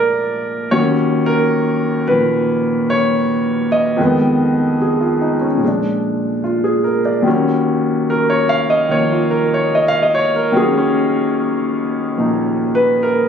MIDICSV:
0, 0, Header, 1, 2, 480
1, 0, Start_track
1, 0, Key_signature, -6, "minor"
1, 0, Tempo, 818554
1, 419, Time_signature, 4, 2, 24, 8
1, 7791, End_track
2, 0, Start_track
2, 0, Title_t, "Grand piano"
2, 0, Program_c, 0, 0
2, 0, Control_c, 0, 64, 127
2, 0, Note_on_c, 0, 46, 60
2, 0, Note_on_c, 0, 53, 41
2, 0, Note_on_c, 0, 56, 56
2, 0, Note_on_c, 0, 58, 45
2, 0, Note_on_c, 0, 62, 66
2, 0, Note_on_c, 0, 70, 76
2, 0, Note_on_c, 0, 74, 79
2, 391, Note_off_c, 0, 70, 0
2, 414, Note_off_c, 0, 53, 0
2, 418, Note_on_c, 0, 73, 81
2, 419, Note_off_c, 0, 46, 0
2, 420, Note_on_c, 0, 39, 55
2, 421, Note_off_c, 0, 56, 0
2, 421, Note_on_c, 0, 51, 55
2, 423, Note_off_c, 0, 62, 0
2, 424, Note_off_c, 0, 58, 0
2, 424, Note_on_c, 0, 54, 52
2, 427, Control_c, 0, 64, 0
2, 428, Note_on_c, 0, 61, 67
2, 432, Note_off_c, 0, 74, 0
2, 491, Note_off_c, 0, 73, 0
2, 548, Control_c, 0, 64, 127
2, 740, Note_on_c, 0, 70, 88
2, 1197, Note_off_c, 0, 70, 0
2, 1212, Note_off_c, 0, 51, 0
2, 1216, Note_on_c, 0, 71, 71
2, 1221, Note_on_c, 0, 51, 38
2, 1229, Note_on_c, 0, 53, 37
2, 1238, Note_on_c, 0, 46, 43
2, 1700, Note_on_c, 0, 73, 78
2, 1713, Note_off_c, 0, 71, 0
2, 2157, Note_off_c, 0, 73, 0
2, 2181, Note_on_c, 0, 75, 69
2, 2326, Note_off_c, 0, 51, 0
2, 2326, Note_on_c, 0, 41, 56
2, 2335, Note_on_c, 0, 51, 57
2, 2338, Note_off_c, 0, 39, 0
2, 2340, Note_off_c, 0, 54, 0
2, 2341, Note_off_c, 0, 53, 0
2, 2342, Note_off_c, 0, 61, 0
2, 2344, Control_c, 0, 64, 0
2, 2345, Note_off_c, 0, 46, 0
2, 2345, Note_on_c, 0, 56, 50
2, 2356, Note_on_c, 0, 59, 64
2, 2433, Control_c, 0, 64, 127
2, 2793, Note_off_c, 0, 75, 0
2, 2824, Note_on_c, 0, 68, 40
2, 2935, Note_on_c, 0, 65, 46
2, 3046, Note_off_c, 0, 68, 0
2, 3057, Note_on_c, 0, 63, 46
2, 3142, Note_off_c, 0, 65, 0
2, 3173, Note_on_c, 0, 61, 43
2, 3205, Note_off_c, 0, 63, 0
2, 3264, Note_on_c, 0, 46, 44
2, 3286, Note_on_c, 0, 53, 44
2, 3291, Note_off_c, 0, 41, 0
2, 3296, Note_off_c, 0, 51, 0
2, 3300, Note_off_c, 0, 56, 0
2, 3305, Control_c, 0, 64, 0
2, 3306, Note_off_c, 0, 59, 0
2, 3309, Note_on_c, 0, 56, 43
2, 3330, Note_on_c, 0, 62, 49
2, 3342, Note_off_c, 0, 61, 0
2, 3403, Control_c, 0, 64, 127
2, 3775, Note_on_c, 0, 65, 43
2, 3894, Note_on_c, 0, 68, 43
2, 4002, Note_off_c, 0, 65, 0
2, 4012, Note_on_c, 0, 70, 45
2, 4102, Note_off_c, 0, 68, 0
2, 4136, Note_on_c, 0, 74, 45
2, 4162, Note_off_c, 0, 70, 0
2, 4236, Note_on_c, 0, 39, 55
2, 4241, Note_off_c, 0, 46, 0
2, 4246, Note_on_c, 0, 51, 51
2, 4252, Note_off_c, 0, 53, 0
2, 4256, Note_on_c, 0, 54, 52
2, 4263, Note_off_c, 0, 56, 0
2, 4264, Control_c, 0, 64, 0
2, 4266, Note_on_c, 0, 61, 58
2, 4274, Note_off_c, 0, 62, 0
2, 4304, Note_off_c, 0, 74, 0
2, 4372, Control_c, 0, 64, 127
2, 4749, Note_on_c, 0, 70, 71
2, 4865, Note_on_c, 0, 73, 74
2, 4901, Note_off_c, 0, 70, 0
2, 4980, Note_on_c, 0, 77, 89
2, 5039, Note_off_c, 0, 73, 0
2, 5095, Note_off_c, 0, 77, 0
2, 5101, Note_on_c, 0, 75, 74
2, 5196, Note_off_c, 0, 75, 0
2, 5200, Note_off_c, 0, 51, 0
2, 5208, Note_on_c, 0, 51, 38
2, 5218, Note_on_c, 0, 53, 33
2, 5227, Note_on_c, 0, 58, 42
2, 5227, Note_on_c, 0, 73, 74
2, 5349, Note_on_c, 0, 65, 50
2, 5380, Note_off_c, 0, 73, 0
2, 5458, Note_on_c, 0, 70, 70
2, 5521, Note_off_c, 0, 65, 0
2, 5574, Note_off_c, 0, 70, 0
2, 5595, Note_on_c, 0, 73, 67
2, 5683, Note_off_c, 0, 73, 0
2, 5717, Note_on_c, 0, 75, 68
2, 5796, Note_on_c, 0, 77, 83
2, 5813, Note_off_c, 0, 75, 0
2, 5851, Note_off_c, 0, 77, 0
2, 5878, Note_on_c, 0, 75, 69
2, 5950, Note_on_c, 0, 73, 81
2, 6028, Note_off_c, 0, 75, 0
2, 6061, Note_off_c, 0, 73, 0
2, 6075, Note_on_c, 0, 70, 67
2, 6159, Note_off_c, 0, 39, 0
2, 6163, Note_off_c, 0, 70, 0
2, 6166, Note_off_c, 0, 51, 0
2, 6167, Note_on_c, 0, 39, 54
2, 6175, Note_on_c, 0, 51, 54
2, 6176, Note_off_c, 0, 54, 0
2, 6179, Note_off_c, 0, 53, 0
2, 6183, Note_off_c, 0, 61, 0
2, 6184, Note_off_c, 0, 58, 0
2, 6185, Note_on_c, 0, 54, 50
2, 6196, Note_on_c, 0, 61, 60
2, 6197, Note_on_c, 0, 68, 67
2, 6310, Note_off_c, 0, 61, 0
2, 6319, Note_on_c, 0, 61, 66
2, 6346, Note_off_c, 0, 68, 0
2, 6423, Note_off_c, 0, 61, 0
2, 7135, Note_on_c, 0, 53, 40
2, 7143, Note_on_c, 0, 46, 36
2, 7152, Note_on_c, 0, 63, 42
2, 7476, Note_on_c, 0, 71, 76
2, 7622, Note_off_c, 0, 71, 0
2, 7640, Note_on_c, 0, 70, 66
2, 7791, Note_off_c, 0, 39, 0
2, 7791, Note_off_c, 0, 46, 0
2, 7791, Note_off_c, 0, 51, 0
2, 7791, Note_off_c, 0, 53, 0
2, 7791, Note_off_c, 0, 54, 0
2, 7791, Note_off_c, 0, 63, 0
2, 7791, Note_off_c, 0, 70, 0
2, 7791, End_track
0, 0, End_of_file